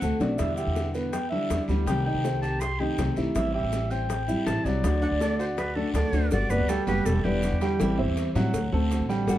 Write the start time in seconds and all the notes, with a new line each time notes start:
Already playing: F#5
0.02 D2 D3 A3 C4 F#4 A4, short guiro, maracas
0.20 B1 A3 C4 D4 F#4 D5, low bongo, short guiro, maracas
0.38 E2 B2 D3 G3 B3 E4 E5, high bongo, long guiro, maracas
0.56 G4 E5 G5, maracas
0.67 E2
0.76 high bongo, short guiro, maracas
0.94 B3 B4, short guiro, maracas
1.12 G5, muted nylon-string guitar stroke, high bongo, long guiro, maracas
1.30 D3 G3 B3 D4 E4 D5 E5
1.50 E2 D3 G3 B3 E4, high bongo, low bongo, short guiro, maracas
1.68 D2 D3 G3 B3 E4 G4, short guiro, maracas
1.86 C2 C3 D#3 G3 A3 C4 G4 G5, high bongo, long guiro, maracas
2.05 D#4 D#5 G5, high bongo
2.14 C2
2.24 C4 C5, high bongo, short guiro, maracas
2.42 G4 G5 A5, high bongo, short guiro, maracas
2.60 C6, muted nylon-string guitar stroke, high bongo, long guiro, maracas
2.80 D#3 A3 C4 D#4 G4 D#5 G5
2.98 C2 D#3 A3 C4 G4 C5, high bongo, low bongo, short guiro, maracas
3.16 B1 D#3 A3 C4 E4 G4 E5, short guiro, maracas
3.35 A1 E3 G3 C4 E4 E5, high bongo, long guiro, maracas
3.54 G4 E5 G5
3.63 A1
3.72 high bongo, short guiro, maracas
3.91 C4 C5 G5, short guiro, maracas
4.09 muted nylon-string guitar stroke, high bongo, long guiro, maracas
4.28 G3 C4 E4 E5, maracas
4.46 A1 E3 G3 C4 E4 A5, high bongo, low bongo, short guiro, maracas
4.64 C2 F#3 G3 C4 E4 F#4 D5, short guiro, maracas
4.84 D2 D3 F#3 A3 D4 F#4, high bongo, long guiro, maracas
5.02 D4 D5 F#5, high bongo
5.11 D2
5.20 A3 A4 D5, high bongo, short guiro, maracas
5.39 F#4 C5 F#5, high bongo, short guiro, maracas
5.57 B4, muted nylon-string guitar stroke, high bongo, long guiro, maracas
5.75 A3 D4 F#4 A4 D5
5.94 D2 D3 A3 D4 F#4 A4 D5, high bongo, low bongo, short guiro, maracas
6.12 D2 A3 D4 F#4 D5, high bongo, short guiro, maracas
6.31 G1 G3 B3 F#4 D5, cowbell, long guiro, maracas
6.50 F#1 B3 B4 D5, maracas
6.60 D2
6.68 G3 G4 A4 G5, cowbell, short guiro, maracas
6.87 F#1 G3 B3 F#4 G4 B4 G5, cowbell, short guiro, maracas
7.05 E1 A4, muted nylon-string guitar stroke, cowbell, long guiro, maracas
7.24 E1 D3 G3 B3 E4 G4 B4 D5
7.43 D3 G3 B3 E4, cowbell, short guiro, maracas
7.52 E2
7.61 G3 G4 G5, cowbell, short guiro, maracas
7.79 A1 E3 G3 C4 E4 G4 G5, cowbell, long guiro, maracas
7.98 G1 C4 C5 E5
8.08 E2
8.17 cowbell, short guiro, maracas
8.35 A2 F#3 G3 C4 E4 F#4 F#5, cowbell, short guiro, maracas
8.54 D2, muted nylon-string guitar stroke, cowbell, long guiro, maracas
8.72 D2 A3 C4 F#4 A4 C5
8.91 D3 A3 C4 F#4, cowbell, short guiro, maracas
9.00 A1
9.09 G3 G5, short guiro, maracas
9.27 G1 G3 B3 F#4, cowbell, long guiro, maracas